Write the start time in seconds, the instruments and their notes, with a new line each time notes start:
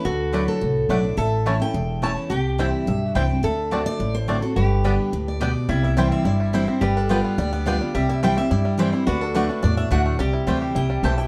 0.05 upright bass D2, steel-string acoustic guitar D3 A4, resonator guitar played with a steel bar F#4
0.33 steel-string acoustic guitar F#3 A3 D4 E4 B4, mandolin A3 E4 D5 F#5, five-string banjo A3 D4
0.48 steel-string acoustic guitar A4
0.61 upright bass C2, steel-string acoustic guitar A2
0.89 upright bass B1, steel-string acoustic guitar F#3 A3 D4 E4 D5, mandolin A3 E4 D5 F#5, five-string banjo A3 D4
1.03 steel-string acoustic guitar D4 E4
1.17 upright bass A1, steel-string acoustic guitar A2 E5, resonator guitar played with a steel bar A4
1.46 steel-string acoustic guitar E3 A3 C#4 E4, mandolin A3 E4 C#5 A5, five-string banjo A3 C#4 E4
1.60 steel-string acoustic guitar C#4 E4 G5
1.74 upright bass E1, steel-string acoustic guitar E2
2.02 steel-string acoustic guitar E3 A3 C#4 E4 A5, mandolin A3 E4 C#5 A5, five-string banjo A3 C#4 E4
2.30 upright bass C2, steel-string acoustic guitar C3 G5, resonator guitar played with a steel bar G4
2.58 steel-string acoustic guitar E3 G3 C4 E4 E5, five-string banjo G3 C4 E4, mandolin C4 E4 C5 G5
2.87 upright bass B1, steel-string acoustic guitar G2 E5
3.07 resonator guitar played with a steel bar F#4
3.15 upright bass C2, steel-string acoustic guitar E3 G3 C4 E4 G5, five-string banjo G3 C4 E4, mandolin C4 E4 C5 G5
3.29 steel-string acoustic guitar C4 E4
3.43 upright bass D2, steel-string acoustic guitar D3 E5, resonator guitar played with a steel bar A4
3.71 steel-string acoustic guitar D3 A3 C4 F#4, five-string banjo A3 C4 D4, mandolin C4 F#4 D5 A5
3.86 steel-string acoustic guitar D5
4.00 upright bass A1, steel-string acoustic guitar A2
4.14 steel-string acoustic guitar C5
4.28 steel-string acoustic guitar D3 A3 C4 F#4, five-string banjo A3 C4 D4, mandolin C4 F#4 D5 A5
4.42 steel-string acoustic guitar C4 F#4 A4
4.56 upright bass G1, steel-string acoustic guitar G2 B4, resonator guitar played with a steel bar G4
4.84 steel-string acoustic guitar D3 G3 B3 G4, five-string banjo G3 B3 D4, mandolin B3 G4 D5 G5
5.13 upright bass D2, steel-string acoustic guitar A2
5.28 steel-string acoustic guitar D5
5.40 steel-string acoustic guitar B2 D5, five-string banjo G3 B3 D4, mandolin B3 G4 D5 G5
5.69 upright bass C2, steel-string acoustic guitar C3 E5, five-string banjo G3, resonator guitar played with a steel bar E4
5.83 five-string banjo E4, steel-string acoustic guitar E5
5.97 steel-string acoustic guitar E3 G3 C4 E4 G5, five-string banjo G3, mandolin C4 E4 C5 G5
6.11 five-string banjo C4, steel-string acoustic guitar E5
6.25 upright bass G1, steel-string acoustic guitar G2 D5, five-string banjo E4
6.40 five-string banjo G3
6.53 steel-string acoustic guitar E3 G3 C4 E4 C5, mandolin C4 E4 C5 G5, five-string banjo E4
6.67 five-string banjo C4, steel-string acoustic guitar C4 E4
6.81 upright bass G1, steel-string acoustic guitar G3 B4, five-string banjo G3, resonator guitar played with a steel bar G4
6.97 five-string banjo D4, steel-string acoustic guitar A4
7.09 steel-string acoustic guitar G3 B3 F4 B4, five-string banjo G3, mandolin B3 F4 B4 G5
7.25 five-string banjo B3
7.38 upright bass D2, steel-string acoustic guitar D3 D5, five-string banjo G3
7.53 five-string banjo B3, steel-string acoustic guitar D5
7.66 steel-string acoustic guitar G3 B3 F4 D5, mandolin B3 F4 B4 G5, five-string banjo D4
7.81 five-string banjo G3, steel-string acoustic guitar B3 F4
7.95 upright bass C2, steel-string acoustic guitar C3 E5, five-string banjo G3, resonator guitar played with a steel bar G4
8.09 five-string banjo E4, steel-string acoustic guitar E5
8.23 steel-string acoustic guitar E3 G3 C4 E4 G5, five-string banjo G3, mandolin C4 E4 C5 G5
8.37 steel-string acoustic guitar C4 E4 E5, five-string banjo G4
8.51 upright bass G2, steel-string acoustic guitar G2 D5, five-string banjo E4
8.65 five-string banjo G3
8.78 steel-string acoustic guitar E3 G3 C4 E4 C5, five-string banjo E3, mandolin C4 E4 C5 G5
8.93 steel-string acoustic guitar C4 E4, five-string banjo E4
9.07 upright bass D2, steel-string acoustic guitar D3 B4, five-string banjo D4, resonator guitar played with a steel bar F#4
9.21 five-string banjo D4, steel-string acoustic guitar A4
9.34 steel-string acoustic guitar D3 A3 D4 F#4 B4, mandolin A3 F#4 D5 F#5, five-string banjo A3
9.49 five-string banjo D4, steel-string acoustic guitar D4 F#4
9.63 upright bass E2, steel-string acoustic guitar A2 D5, five-string banjo D4
9.77 five-string banjo D4, steel-string acoustic guitar E5
9.91 upright bass D2, steel-string acoustic guitar D3 A3 D4 F#4 F#5, mandolin A3 F#4 D5 F#5, five-string banjo D4
10.06 five-string banjo A3
10.19 upright bass C2, steel-string acoustic guitar C3 G5, five-string banjo G3, resonator guitar played with a steel bar G4
10.33 five-string banjo E4
10.47 upright bass D2, steel-string acoustic guitar E3 A3 C4 E4, five-string banjo G3, mandolin A3 E4 C5 G5
10.62 five-string banjo G4
10.75 upright bass C2, steel-string acoustic guitar C3 G5, five-string banjo E4
10.90 five-string banjo G3
11.03 upright bass B1, steel-string acoustic guitar B2 A5, five-string banjo E3, mandolin A3 E4 C5 G5
11.18 five-string banjo E4, steel-string acoustic guitar G5